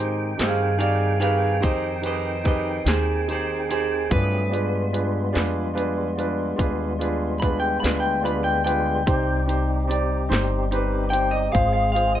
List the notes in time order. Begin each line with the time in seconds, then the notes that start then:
Already playing: G#2 D#3 C4 D#4 G4 G#4 G5
0.00 C5
0.37 G2 D#4 G4 G#4 C5 F5, snare, closed hi-hat
0.78 D#4 G4 G#4 D5 F5, closed hi-hat
1.20 D#4 G4 G#4 B4 F5, closed hi-hat
1.60 F2 D#4 G4 G#4 C5 D#5, kick, closed hi-hat
2.01 D#4 G4 G#4 B4, closed hi-hat
2.06 C5 D#5
2.44 D#4 G4 G#4 B4 C5 D#5, kick, closed hi-hat
2.85 D#2 D#4 G4 G#4 C5, snare, closed hi-hat
3.28 D#4 G4 G#4 C5, closed hi-hat
3.32 G#4
3.69 D#4 G4 G#4 C5, closed hi-hat
4.10 G2 F#3 A3 C4 D4 F4 G#4 B4, kick, closed hi-hat
4.50 G3 G#3 B3 D4 F4 G#4 B4, closed hi-hat
4.93 D4 F4 G#4 B4, closed hi-hat
5.33 F2 D4 F4 G#4 B4, closed hi-hat
5.37 snare
5.74 D4 F4 G#4 B4, closed hi-hat
6.17 D4 F4 G#4 B4, closed hi-hat
6.56 D#2 D4 F4 G#4 B4, kick, closed hi-hat
6.99 D4 F4 G#4 B4, closed hi-hat
7.40 D4 F4 G#4 B4 B5, kick, closed hi-hat
7.60 G5
7.80 D2 D4 F4 G#4 B4 B5
7.84 snare, closed hi-hat
8.00 G5
8.22 D4 F4 G#4 B4 B5, closed hi-hat
8.44 G5
8.64 D4 F4 G#4 B4 G5, closed hi-hat
9.06 C2 G3 C4 D#4 G4 C5, kick, closed hi-hat
9.46 C4 D#4 G4 C5, closed hi-hat
9.87 C4 D#4 G4 D5, closed hi-hat
10.29 G1 C4 D#4 G4 C5, closed hi-hat
10.33 snare
10.71 C4 D#4 G4 B4, closed hi-hat
11.10 C4 D#4 G4 C5 G5, closed hi-hat
11.31 D#5
11.52 G#1 G#3 C4 F4 G#4 C5 F5, kick, closed hi-hat
11.73 F5
11.92 C4 F4 G#4 C5 F5
11.96 closed hi-hat
12.15 D#5